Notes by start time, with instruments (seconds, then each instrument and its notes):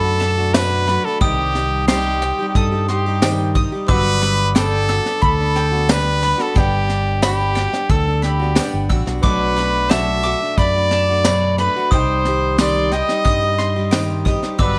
Already playing: upright piano B1 B2 F#3 B3 D4 A4 B4, fingered electric bass F#2, steel-string acoustic guitar D3, trumpet A4, mandolin A5 B5 D6, glockenspiel D6
0.04 steel-string acoustic guitar A3 D4 F#4
0.20 mandolin A5, snare
0.38 steel-string acoustic guitar A3 D4 F#4
0.54 steel-string acoustic guitar B2 F#3 A3 D4 F#4, trumpet B4, snare, tambourine
0.87 steel-string acoustic guitar F#3 A3 D4 F#4, mandolin B5, snare
1.04 steel-string acoustic guitar A3 D4 F#4, trumpet A4
1.21 upright piano C2 C3 G3 C4 D#4 C5 D#5, fingered electric bass C2, steel-string acoustic guitar C3 D#3 G3 D#4 G4, trumpet G4, mandolin G5, glockenspiel D#6, kick, snare
1.55 steel-string acoustic guitar D#3 G3 D#4 G4, snare
1.88 steel-string acoustic guitar C3 D#3 G3 D#4 G4, trumpet G4, mandolin C6, snare, tambourine
2.22 steel-string acoustic guitar D#3 G3, mandolin G5, snare
2.26 steel-string acoustic guitar G4
2.39 steel-string acoustic guitar G3 D#4 G4
2.48 trumpet G4
2.55 fingered electric bass G2, trumpet A4, mandolin D#6, kick, snare
2.72 steel-string acoustic guitar G3 D#4 G4
2.88 trumpet G4, mandolin C6, snare
3.06 steel-string acoustic guitar G3 D#4 G4
3.22 steel-string acoustic guitar C3 D#3 G3 D#4 G4, upright piano G3 C4 D#4 C5 D#5, mandolin G5, snare, tambourine
3.55 steel-string acoustic guitar D#3 G3 D#4, mandolin D#6, kick, snare
3.60 steel-string acoustic guitar G4
3.72 steel-string acoustic guitar G3 D#4 G4
3.88 fingered electric bass G1, upright piano G1 G2 F#3 G3 D4 B4 D5, steel-string acoustic guitar G3 B3 D4 F#4, trumpet B4, glockenspiel D6, mandolin E6, kick, snare
4.21 steel-string acoustic guitar G3 B3 D4 F#4, mandolin B5, snare
4.55 steel-string acoustic guitar G3 B3 D4, trumpet A4, mandolin G5, snare, tambourine
4.88 steel-string acoustic guitar G3 B3 D4 F#4, mandolin E6, snare
5.06 steel-string acoustic guitar B3 D4, snare
5.22 fingered electric bass D2, trumpet A4, mandolin B5, kick, snare
5.40 steel-string acoustic guitar B3 D4
5.56 mandolin G5, snare
5.72 steel-string acoustic guitar B3 D4 F#4
5.89 steel-string acoustic guitar G3 D4, trumpet B4, snare, tambourine
6.21 steel-string acoustic guitar G3 B3 D4 F#4, mandolin B5, snare
6.38 steel-string acoustic guitar B3 D4 F#4, trumpet A4, snare
6.54 fingered electric bass G1, upright piano G1 G2 G3 D4 B4 D5 F#5, steel-string acoustic guitar G3 B3 D4, trumpet G4, mandolin G5, kick, snare
6.88 steel-string acoustic guitar G3 B3 D4, snare
7.22 steel-string acoustic guitar G3 B3 D4, trumpet G4, mandolin B5, snare, tambourine
7.55 steel-string acoustic guitar G3 B3 D4 F#4, mandolin G5, snare
7.73 steel-string acoustic guitar B3 D4, snare
7.90 fingered electric bass D2, trumpet A4, mandolin E6, kick, snare
8.08 steel-string acoustic guitar B3 D4
8.22 trumpet G4, mandolin B5, snare
8.39 steel-string acoustic guitar B3 D4 F#4
8.55 steel-string acoustic guitar G3 B3 D4, upright piano G3 D4 B4 D5 F#5, mandolin G5, snare, tambourine
8.74 fingered electric bass G1
8.89 fingered electric bass A1, steel-string acoustic guitar G3 B3 D4 F#4, mandolin E6, kick, snare
9.06 fingered electric bass B1, steel-string acoustic guitar B3 D4 F#4, snare
9.23 fingered electric bass B1, upright piano B1 B2 A3 D4 F#4 B4 D5, steel-string acoustic guitar B2 F#3 A3 D4 F#4, trumpet B4, mandolin D6, glockenspiel D6, kick, snare
9.56 steel-string acoustic guitar F#3 A3 D4 F#4, mandolin B5, snare
9.90 steel-string acoustic guitar B2 F#3 A3 D4 F#4, trumpet E5, mandolin A5, snare, tambourine
10.23 steel-string acoustic guitar F#3 A3 D4 F#4, mandolin D6, snare
10.41 steel-string acoustic guitar A3 D4 F#4
10.58 fingered electric bass F#2, trumpet D5, mandolin B5, kick, snare
10.74 steel-string acoustic guitar A3 D4 F#4
10.91 mandolin A5, snare
11.09 steel-string acoustic guitar A3 D4 F#4
11.25 steel-string acoustic guitar B2 F#3 A3 D4 F#4, glockenspiel B5, snare, tambourine
11.58 steel-string acoustic guitar F#3 A3 D4 F#4, trumpet B4, mandolin B5, snare
11.76 steel-string acoustic guitar A3 D4 F#4
11.91 fingered electric bass C2, upright piano C2 C3 G3 C4 D#4 C5 G5, steel-string acoustic guitar C3 D#3 G3 D#4 G4, trumpet C5, mandolin G5, glockenspiel D#6, kick, snare
12.25 steel-string acoustic guitar D#3 G3 D#4 G4, snare
12.58 steel-string acoustic guitar C3 D#3 G3 D#4 G4, trumpet D5, mandolin C6, snare, tambourine
12.92 steel-string acoustic guitar G3, trumpet D#5, mandolin G5, snare
12.96 steel-string acoustic guitar G4
13.08 steel-string acoustic guitar G3 D#4 G4, snare
13.25 fingered electric bass G2, mandolin D#6, kick, snare
13.43 steel-string acoustic guitar G3 D#4 G4
13.58 mandolin C6, snare
13.76 steel-string acoustic guitar G3 D#4 G4
13.91 steel-string acoustic guitar C3 D#3 G3 D#4 G4, mandolin G5, snare, tambourine
14.25 steel-string acoustic guitar D#3 G3 D#4 G4, upright piano G3 C4 D#4 C5 D#5, mandolin D#6, kick, snare
14.42 steel-string acoustic guitar G3 D#4 G4, snare
14.58 fingered electric bass G1, upright piano G1 G2 F#3 G3 D4 B4 D5, steel-string acoustic guitar G3 B3 D4 F#4, trumpet B4, glockenspiel D6, mandolin E6, kick, snare